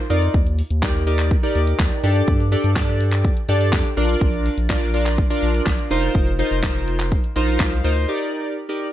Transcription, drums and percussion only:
0.10 open hi-hat medium
0.10 shaker medium
0.22 closed hi-hat medium
0.22 shaker medium
0.34 kick loud
0.34 shaker medium
0.47 closed hi-hat medium
0.47 shaker medium
0.59 open hi-hat medium
0.59 shaker medium
0.70 closed hi-hat medium
0.70 shaker medium
0.82 kick loud
0.82 snare medium
0.82 clap loud
0.82 shaker medium
0.95 closed hi-hat medium
0.95 shaker medium
1.07 open hi-hat medium
1.07 shaker medium
1.19 clap medium
1.19 closed hi-hat medium
1.19 shaker medium
1.31 kick loud
1.31 shaker medium
1.43 closed hi-hat medium
1.43 shaker medium
1.55 open hi-hat medium
1.55 shaker medium
1.67 closed hi-hat medium
1.67 shaker medium
1.79 kick loud
1.79 snare medium
1.79 clap loud
1.79 shaker medium
1.92 closed hi-hat medium
1.92 shaker medium
2.04 open hi-hat medium
2.04 shaker medium
2.16 closed hi-hat medium
2.16 shaker medium
2.28 kick loud
2.28 shaker medium
2.40 closed hi-hat medium
2.40 shaker medium
2.52 open hi-hat medium
2.52 shaker medium
2.64 closed hi-hat medium
2.64 shaker medium
2.76 kick loud
2.76 snare medium
2.76 clap loud
2.76 shaker medium
2.88 closed hi-hat medium
2.88 shaker medium
3.01 open hi-hat medium
3.01 shaker medium
3.12 clap medium
3.12 closed hi-hat medium
3.12 shaker medium
3.25 kick loud
3.25 shaker medium
3.37 closed hi-hat medium
3.37 shaker medium
3.49 open hi-hat medium
3.49 shaker medium
3.61 closed hi-hat medium
3.61 shaker medium
3.72 kick loud
3.72 snare medium
3.72 clap loud
3.72 shaker medium
3.85 closed hi-hat medium
3.85 shaker medium
3.97 open hi-hat medium
3.97 shaker medium
4.09 closed hi-hat medium
4.09 shaker medium
4.21 kick loud
4.21 shaker medium
4.34 closed hi-hat medium
4.34 shaker medium
4.46 open hi-hat medium
4.46 shaker medium
4.58 closed hi-hat medium
4.58 shaker medium
4.69 kick loud
4.69 snare medium
4.69 clap loud
4.69 shaker medium
4.82 closed hi-hat medium
4.82 shaker medium
4.94 open hi-hat medium
4.94 shaker medium
5.06 clap medium
5.06 closed hi-hat medium
5.06 shaker medium
5.18 kick loud
5.18 shaker medium
5.31 closed hi-hat medium
5.31 shaker medium
5.42 open hi-hat medium
5.42 shaker soft
5.54 closed hi-hat medium
5.54 shaker medium
5.66 kick loud
5.66 snare medium
5.66 clap loud
5.66 shaker medium
5.79 closed hi-hat medium
5.79 shaker medium
5.91 open hi-hat medium
5.91 shaker medium
6.03 closed hi-hat medium
6.03 shaker medium
6.15 kick loud
6.15 shaker medium
6.27 closed hi-hat medium
6.27 shaker medium
6.39 open hi-hat medium
6.39 shaker medium
6.51 closed hi-hat medium
6.51 shaker medium
6.63 kick loud
6.63 snare medium
6.63 clap loud
6.63 shaker medium
6.75 closed hi-hat medium
6.75 shaker medium
6.88 open hi-hat medium
6.88 shaker medium
7.00 clap medium
7.00 closed hi-hat medium
7.00 shaker medium
7.12 kick loud
7.12 shaker medium
7.24 closed hi-hat medium
7.24 shaker medium
7.36 open hi-hat medium
7.36 shaker soft
7.48 closed hi-hat medium
7.48 shaker medium
7.59 kick loud
7.59 snare medium
7.59 clap loud
7.59 shaker medium
7.73 closed hi-hat medium
7.73 shaker medium
7.85 open hi-hat medium
7.85 shaker medium
7.96 closed hi-hat medium
7.96 shaker medium

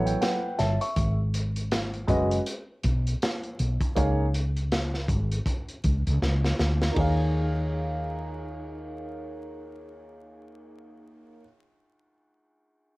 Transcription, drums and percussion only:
0.07 closed hi-hat soft
0.22 snare loud
0.22 closed hi-hat medium
0.59 snare soft
0.59 closed hi-hat medium
0.81 closed hi-hat medium
0.96 kick loud
0.96 closed hi-hat medium
1.34 closed hi-hat medium
1.56 closed hi-hat soft
1.71 snare medium
1.71 closed hi-hat medium
1.93 closed hi-hat soft
2.08 kick medium
2.08 closed hi-hat medium
2.31 closed hi-hat medium
2.46 closed hi-hat medium
2.83 kick medium
2.83 closed hi-hat medium
3.07 closed hi-hat soft
3.22 snare loud
3.22 closed hi-hat medium
3.43 closed hi-hat soft
3.59 closed hi-hat medium
3.81 kick medium
3.81 closed hi-hat medium
3.97 kick medium
3.97 closed hi-hat medium
4.34 closed hi-hat medium
4.57 closed hi-hat soft
4.72 snare medium
4.72 closed hi-hat medium
4.94 snare soft
5.08 kick medium
5.08 closed hi-hat medium
5.32 closed hi-hat medium
5.46 kick medium
5.46 closed hi-hat medium
5.69 closed hi-hat soft
5.84 kick medium
5.84 closed hi-hat medium
6.07 closed hi-hat soft
6.22 snare soft
6.44 snare soft
6.59 snare medium
6.82 snare medium
6.96 kick medium
6.96 ride medium

